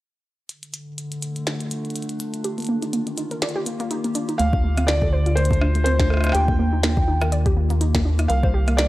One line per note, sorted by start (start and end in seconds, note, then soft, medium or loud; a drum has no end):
0.49 2.44 D3 medium
0.49 closed hi-hat medium
0.63 closed hi-hat soft
0.74 closed hi-hat medium
0.94 2.44 A3 medium
0.98 closed hi-hat medium
1.12 3.23 D4 medium
1.12 closed hi-hat soft
1.22 8.88 F4 medium
1.22 closed hi-hat medium
1.36 closed hi-hat soft
1.47 snare loud
1.47 closed hi-hat medium
1.61 closed hi-hat soft
1.71 closed hi-hat medium
1.85 closed hi-hat soft
1.90 closed hi-hat soft
1.96 closed hi-hat medium
2.02 closed hi-hat soft
2.09 closed hi-hat soft
2.20 closed hi-hat loud
2.34 closed hi-hat soft
2.44 4.40 D#3 medium
2.44 2.54 G4 loud
2.44 closed hi-hat medium
2.58 2.68 A#3 medium
2.58 closed hi-hat soft
2.60 closed hi-hat soft
2.62 closed hi-hat soft
2.65 closed hi-hat soft
2.67 2.78 A#3 loud
2.67 closed hi-hat soft
2.83 2.90 D#4 medium
2.83 closed hi-hat soft
2.93 2.99 A#3 medium
2.93 closed hi-hat medium
3.07 3.14 D4 medium
3.07 closed hi-hat soft
3.14 4.40 A#3 medium
3.14 3.27 D#4 medium
3.14 closed hi-hat medium
3.31 5.09 G4 medium
3.31 3.39 A#4 medium
3.31 closed hi-hat soft
3.42 3.51 D5 loud
3.42 snare loud
3.42 closed hi-hat medium
3.49 closed hi-hat soft
3.56 3.63 G4 loud
3.66 3.79 A#3 medium
3.66 closed hi-hat medium
3.80 3.87 A#3 loud
3.80 closed hi-hat soft
3.91 4.00 D#4 medium
3.91 closed hi-hat medium
4.04 4.09 A#3 medium
4.04 closed hi-hat soft
4.15 4.24 D4 medium
4.15 closed hi-hat loud
4.29 4.36 D#4 medium
4.29 closed hi-hat soft
4.38 6.33 D2 medium
4.38 6.35 D3 medium
4.38 4.49 A3 loud
4.38 4.89 F5 medium
4.38 closed hi-hat medium
4.53 4.60 D4 medium
4.53 kick loud
4.64 4.69 A3 medium
4.78 4.85 C4 medium
4.78 cross-stick medium
4.78 closed hi-hat medium
4.87 6.35 A3 medium
4.87 4.98 D4 medium
4.87 5.38 D5 medium
4.87 snare loud
4.87 closed hi-hat medium
5.02 7.13 D4 medium
5.02 5.09 A4 medium
5.02 kick loud
5.13 5.22 C5 loud
5.26 5.34 F4 loud
5.26 closed hi-hat soft
5.36 5.49 A3 medium
5.36 5.83 C5 medium
5.36 closed hi-hat medium
5.45 closed hi-hat medium
5.51 5.58 A3 loud
5.51 kick loud
5.51 closed hi-hat soft
5.61 5.71 D4 medium
5.61 cross-stick medium
5.75 5.79 A3 medium
5.75 closed hi-hat soft
5.84 5.95 C4 medium
5.84 6.30 C5 medium
5.84 closed hi-hat medium
5.99 6.07 D4 medium
5.99 kick loud
5.99 snare loud
5.99 closed hi-hat soft
6.10 6.20 A4 medium
6.10 cross-stick soft
6.14 cross-stick soft
6.17 cross-stick soft
6.21 6.31 C5 loud
6.21 cross-stick medium
6.24 cross-stick medium
6.24 closed hi-hat medium
6.27 cross-stick medium
6.29 cross-stick medium
6.32 8.28 D#2 medium
6.32 8.30 D#3 medium
6.32 6.44 G4 loud
6.32 7.27 G5 loud
6.32 cross-stick medium
6.32 closed hi-hat medium
6.48 6.58 A#3 medium
6.48 kick loud
6.59 6.68 A#3 loud
6.73 6.80 D#4 medium
6.83 6.89 A#3 medium
6.83 snare loud
6.83 closed hi-hat medium
6.92 8.88 A#3 medium
6.97 7.04 D4 medium
6.97 kick loud
7.08 7.17 D#4 medium
7.08 8.88 G4 medium
7.21 7.29 A#4 medium
7.21 cross-stick medium
7.21 closed hi-hat soft
7.32 7.41 D5 medium
7.32 closed hi-hat medium
7.46 7.53 G4 loud
7.46 kick loud
7.46 closed hi-hat soft
7.57 7.69 A#3 medium
7.70 7.78 A#3 loud
7.70 closed hi-hat soft
7.81 7.90 D#4 medium
7.81 closed hi-hat medium
7.95 7.99 A#3 medium
7.95 kick loud
7.95 snare loud
7.95 closed hi-hat soft
8.05 8.15 D4 medium
8.19 8.26 D#4 medium
8.19 cross-stick medium
8.19 closed hi-hat medium
8.28 8.88 C2 medium
8.28 8.88 C3 medium
8.28 8.39 A#4 medium
8.28 8.74 F5 medium
8.28 closed hi-hat medium
8.43 8.88 G3 medium
8.43 8.51 C5 loud
8.43 kick loud
8.54 8.63 G4 loud
8.68 8.77 A#3 medium
8.68 cross-stick medium
8.68 closed hi-hat medium
8.77 8.88 A#3 loud
8.77 8.88 D5 medium
8.77 snare loud
8.77 closed hi-hat medium